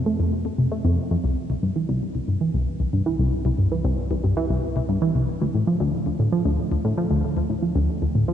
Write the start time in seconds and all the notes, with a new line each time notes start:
Already playing: F2
0.06 A3
0.19 F2
0.45 F2
0.58 C3
0.72 A3
0.85 F2
1.11 F2
1.24 C2
1.50 C2
1.63 G2
1.76 E3
1.89 C2
2.15 C2
2.28 G2
2.41 E3
2.54 C2
2.80 C2
2.93 G2
3.06 E3
3.19 C2
3.45 C2
3.58 G2
3.72 E3
3.85 C2
4.11 C2
4.24 G2
4.37 E3
4.50 C2
4.76 C2
4.89 G2
5.02 E3
5.15 C2
5.41 D2
5.55 A2
5.67 F3
5.80 D2
6.06 D2
6.19 A2
6.32 F3
6.45 D2
6.72 D2
6.85 A2
6.98 F3
7.10 D2
7.37 D2
7.50 A2
7.62 F3
7.75 D2
8.02 D2
8.15 A2
8.28 F3